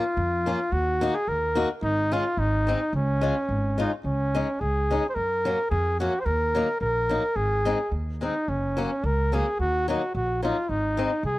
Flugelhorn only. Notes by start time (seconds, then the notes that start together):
Already playing: F4
0.73 F#4
1.14 G#4
1.28 A#4
1.83 D#4
2.12 F4
2.39 D#4
2.96 C#4
3.80 D#4
4.05 C#4
4.60 G#4
5.09 C5
5.15 A#4
5.70 G#4
6.00 F#4
6.20 C5
6.25 A#4
6.81 A#4
7.36 G#4
8.23 D#4
8.49 C#4
9.05 A#4
9.34 G#4
9.60 F#4
9.89 F#4
10.15 F#4
10.44 F4
10.69 D#4
11.25 G#4